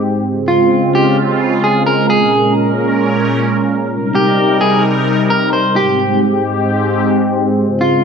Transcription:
Already playing: G#2 G#3 C4 G4
0.26 C#3 G#3 C4 F4
0.48 F4
0.95 G4
1.64 G#4
1.86 A#4
2.10 A#2 C#4 G#4 A#4
3.92 C3 G3 D#4 A#4
4.15 G4
4.61 G#4
5.30 A#4
5.53 C5
5.76 G#2 G#3 C4 G4
7.59 C#3 F4
7.81 F4

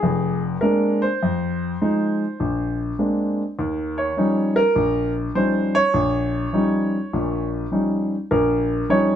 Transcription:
Already playing: G#4
0.03 F1 F2
0.61 G#3 A#3 C4 D4 A#4
1.02 C5
1.23 F2
1.81 F3 G#3 D#4
2.40 A#1
2.99 G#3 A#3 C4 D4
3.59 D#2
3.98 C#5
4.17 F3 G3 C#4 D#4
4.56 A#4
4.76 A#1
5.35 F3 G3 C#4 D#4 C5
5.75 C#5
5.94 A#1
6.53 F3 G3 C#4 D#4
7.13 A#1 A#2
7.71 F3 G3 C#4 D#4
8.31 A#1 A#4
8.89 F3 G3 C#4 D#4 C#5

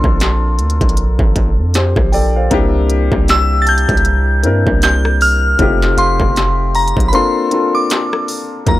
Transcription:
Already playing: A#3 C4 D4 F4 A4 A#4 C6
0.04 A#1, kick, cross-stick
0.20 snare, closed hi-hat
0.59 D2, closed hi-hat
0.70 closed hi-hat
0.81 A#1, kick, closed hi-hat
0.89 closed hi-hat
0.97 closed hi-hat
1.19 A1, kick
1.36 kick, closed hi-hat
1.58 F2
1.74 G4 C5, snare, closed hi-hat
1.96 A#1, kick, cross-stick
2.12 A4 D5 G5, open hi-hat
2.36 C5 F5
2.51 C2 A#3 C4 D4 E4 G4, kick, closed hi-hat
2.90 closed hi-hat
3.12 C2, kick, cross-stick
3.28 E6, snare, closed hi-hat
3.62 A6
3.66 A5 G6, closed hi-hat
3.78 closed hi-hat
3.89 C2, kick, closed hi-hat
3.97 closed hi-hat
4.05 closed hi-hat
4.43 G2 A#3 C4 D4 E4 A#4, closed hi-hat
4.67 C2, kick
4.82 G6, snare, closed hi-hat
5.05 cross-stick
5.21 F6, open hi-hat
5.59 F1 A3 C4 D#4 F4 G4, kick, closed hi-hat
5.82 snare
5.97 F1 F5 C6, closed hi-hat
6.20 F1, kick, cross-stick
6.36 snare, closed hi-hat
6.75 A#5, closed hi-hat, open hi-hat
6.88 closed hi-hat
6.97 A#1, kick, closed hi-hat
7.08 B5
7.12 A#3 C4 D4 F4 A4 C6, closed hi-hat
7.51 A#3 C4 D4 F4 A4, closed hi-hat
7.75 D6
7.90 snare, closed hi-hat
8.13 cross-stick
8.28 open hi-hat
8.66 D#2 F#3 A#3 D#4 F4 A#4 A#5, kick, closed hi-hat

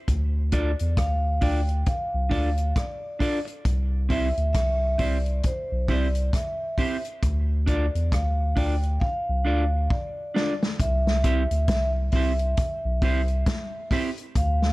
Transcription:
0.08 D2, kick, closed hi-hat
0.52 D4 F4 A4 D5, kick, closed hi-hat
0.79 E2, closed hi-hat
0.97 D2 F5, kick, cross-stick, closed hi-hat
1.41 D2 D4 F4 A4 D5 G5, kick, open hi-hat
1.69 closed hi-hat
1.86 F5, kick, closed hi-hat
2.14 C2
2.29 D2 D4 F4 A4 D5, kick, open hi-hat
2.57 closed hi-hat
2.76 D5, kick, cross-stick, closed hi-hat
3.19 D4 F4 A4 D5, kick, open hi-hat
3.45 muted clean electric guitar stroke, closed hi-hat
3.65 C2, kick, closed hi-hat
4.09 C4 E4 G4 C5 E5, kick, open hi-hat
4.37 D2, closed hi-hat
4.53 C2 E5, kick, cross-stick, closed hi-hat
4.98 C2 C4 E4 G4 C5 D5, kick, open hi-hat
5.26 closed hi-hat
5.43 C5, kick, closed hi-hat
5.71 B1
5.88 C2 C4 E4 G4 C5 D5, kick, open hi-hat
6.15 closed hi-hat
6.33 E5, kick, cross-stick, closed hi-hat
6.78 C4 E4 G4 C5, kick, open hi-hat
7.05 closed hi-hat
7.23 D2, kick, closed hi-hat
7.66 D4 F4 A4 D5, kick, closed hi-hat
7.95 E2, closed hi-hat
8.12 D2 F5, kick, cross-stick, closed hi-hat
8.56 D2 D4 F4 A4 D5 G5, kick, open hi-hat
8.83 closed hi-hat
9.00 F5, kick
9.29 C2
9.45 D2 D4 F4 A4 D5
9.90 D5, kick
10.34 D4 F4 A4 D5, snare
10.63 snare
10.80 C2 E5, kick, closed hi-hat
11.07 snare
11.24 C4 E4 G4 C5, kick, closed hi-hat
11.51 D2, closed hi-hat
11.68 C2 E5, kick, snare, closed hi-hat
12.12 C2 C4 E4 G4 C5 E5, kick, open hi-hat
12.39 closed hi-hat
12.57 kick, closed hi-hat
12.85 B1
13.02 C2 C4 E4 G4 C5, kick, open hi-hat
13.28 closed hi-hat
13.46 kick, snare, closed hi-hat
13.91 C4 E4 G4 C5, kick, open hi-hat
14.17 closed hi-hat
14.35 D2 F5, kick, closed hi-hat
14.62 snare

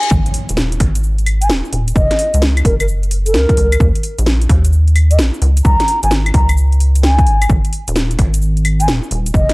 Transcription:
Already playing: D#4 C#5 F5 G#5, reverse cymbal
0.03 closed hi-hat
0.11 G#1, kick, impact, shaker
0.26 closed hi-hat, shaker
0.34 open hi-hat
0.49 D#1, closed hi-hat, shaker
0.57 snare, shaker
0.72 closed hi-hat, shaker
0.80 G#1, finger snap, kick, open hi-hat
0.95 closed hi-hat, shaker
1.03 shaker
1.18 closed hi-hat, shaker
1.26 open hi-hat, claves
1.41 G#5, closed hi-hat, shaker
1.50 D#1, snare, shaker
1.65 shaker
1.73 D#1, open hi-hat
1.88 closed hi-hat, shaker
1.96 F#1 D#5, kick, shaker
2.11 finger snap, snare, closed hi-hat, shaker
2.19 open hi-hat
2.34 C#2, closed hi-hat, shaker
2.42 snare, shaker
2.57 closed hi-hat, claves, shaker
2.65 F#1 A#4, kick, open hi-hat
2.80 A#4, closed hi-hat, claves, shaker
2.88 shaker
3.03 closed hi-hat, shaker
3.11 open hi-hat
3.26 A#4, closed hi-hat, shaker
3.34 C#2, snare, shaker
3.49 kick, closed hi-hat, shaker
3.57 C#2, open hi-hat
3.72 closed hi-hat, claves, shaker
3.80 D#2, kick, shaker
3.95 closed hi-hat, shaker
4.03 open hi-hat
4.18 A#1, closed hi-hat, shaker
4.26 snare, shaker
4.42 closed hi-hat, shaker
4.49 D#2, finger snap, kick, open hi-hat
4.65 closed hi-hat, shaker
4.73 shaker
4.88 closed hi-hat, shaker
4.96 open hi-hat, claves
5.11 D#5, closed hi-hat, shaker
5.19 A#1, snare, shaker
5.34 shaker
5.42 C#2, open hi-hat
5.57 closed hi-hat, shaker
5.65 C#2 A#5, kick, shaker
5.80 finger snap, snare, closed hi-hat, shaker
5.88 open hi-hat
6.03 G#1 G#5, closed hi-hat, shaker
6.11 snare, shaker
6.26 closed hi-hat, claves, shaker
6.34 C#2 A#5, kick, open hi-hat
6.49 closed hi-hat, claves, shaker
6.57 shaker
6.72 closed hi-hat, shaker
6.80 open hi-hat
6.96 closed hi-hat, shaker
7.03 G#5, snare, shaker
7.19 kick, closed hi-hat, shaker
7.27 G#1, open hi-hat
7.42 closed hi-hat, claves, shaker
7.50 G#1, kick, shaker
7.65 closed hi-hat, shaker
7.73 open hi-hat
7.88 D#1, closed hi-hat, shaker
7.96 snare, shaker
8.11 closed hi-hat, shaker
8.19 G#1, finger snap, kick, open hi-hat
8.34 closed hi-hat, shaker
8.42 shaker
8.57 closed hi-hat, shaker
8.65 open hi-hat, claves
8.80 G#5, closed hi-hat, shaker
8.88 D#1, snare, shaker
9.03 shaker
9.11 D#1, open hi-hat
9.26 closed hi-hat, shaker
9.34 F#1 D#5, kick, shaker
9.49 finger snap, snare, closed hi-hat, shaker

